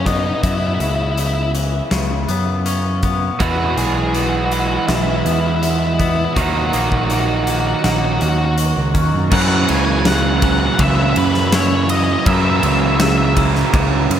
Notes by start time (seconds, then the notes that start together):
Already playing: F#2 C#3 E3 C#4
0.00 C#4
0.06 B3 D#4, kick, snare, closed hi-hat
0.12 D#4
0.19 D#4
0.26 D#4
0.35 D#4
0.43 F#2 E4, kick, closed hi-hat
0.49 E4
0.59 E4
0.67 E4
0.74 E4
0.80 C#2 C#3 E4, closed hi-hat
0.89 E4
0.96 E4
1.03 E4
1.11 E4
1.18 C#3 E4, closed hi-hat
1.27 E4
1.35 E4
1.43 E4
1.55 E3, closed hi-hat
1.91 C#2 C#3, snare, closed hi-hat
2.28 F#2 B3, closed hi-hat
2.66 C#4, closed hi-hat
3.03 B3, kick, closed hi-hat
3.39 E2 E3 G#3 B3 E4 F#4, kick, closed hi-hat
3.50 F#4
3.58 F#4
3.65 F#4
3.77 B1 G#3 G#4, closed hi-hat
3.87 G#4
3.94 G#4
4.03 G#4
4.14 E3 F#4, closed hi-hat
4.22 F#4
4.29 F#4
4.37 F#4
4.45 F#4
4.52 G#3 F#4, closed hi-hat
4.60 F#4
4.68 F#4
4.77 F#4
4.87 B1 E3 E4, snare, closed hi-hat
4.95 E4
5.02 E4
5.10 E4
5.17 E4
5.25 E2 B3 E4, closed hi-hat
5.33 E4
5.41 E4
5.48 E4
5.56 E4
5.63 E4, closed hi-hat
5.71 E4
5.79 E4
5.86 E4
5.94 E4
5.99 B3 E4, kick, closed hi-hat
6.09 E4
6.16 E4
6.25 E4
6.34 D#2 D#3 F#3 A#3 F#4, kick, closed hi-hat
6.38 D#4 F#4
6.50 F#4
6.58 F#4
6.66 F#4
6.73 A#1 A#3 F#4, closed hi-hat
6.81 F#4
6.90 F#4, kick
6.97 F#4
7.05 F#4
7.10 D#3 F#4, closed hi-hat
7.20 F#4
7.27 F#4
7.36 F#4
7.44 A#3 F#4, closed hi-hat
7.52 F#4
7.60 F#4
7.67 F#4
7.74 F#4
7.84 A#1 D#3 F#4, snare, closed hi-hat
7.90 F#4
7.98 F#4
8.06 F#4
8.13 F#4
8.21 D#2 C#4 F#4, closed hi-hat
8.29 F#4
8.38 F#4
8.45 F#4
8.57 F#4, closed hi-hat
8.77 C#2
8.94 D#2 C#4, kick, closed hi-hat
9.14 F#2
9.31 F#2 C#3 E3 A#3 E4 F#5, kick, crash
9.42 F#5
9.48 F#5
9.56 F#5
9.63 F#5
9.69 C#2 C#3 G#5, ride
9.77 G#5
9.85 G#5
9.92 G#5
9.99 G#5
10.05 C#3 F#5, snare, ride
10.15 F#5
10.23 F#5
10.29 F#5
10.37 F#5
10.42 E3 F#5, kick, ride
10.52 F#5
10.60 F#5
10.66 F#5
10.75 F#5
10.79 C#2 C#3 E5, kick, ride
10.88 E5
10.95 E5
11.03 E5
11.10 E5
11.16 F#2 B4, ride
11.24 B4
11.33 B4, snare
11.40 B4
11.47 B4
11.52 E4 C#5, snare, ride
11.60 C#5
11.68 C#5
11.76 C#5
11.83 C#5
11.89 D#5, ride
11.97 D#5
12.04 D#5
12.13 D#5
12.19 D#5
12.25 F#2 C#3 E3 A#3 E4 E5, kick, ride
12.34 E5
12.42 E5
12.49 E5
12.57 E5
12.63 C#2 C#3 E5, ride
12.72 E5
12.80 E5
12.87 E5
12.96 E5
13.00 C#3 E5, snare, ride
13.10 E5
13.18 E5
13.25 E5
13.37 E3, kick, ride
13.55 snare
13.74 C#2 C#3, kick, ride
14.10 F#2, ride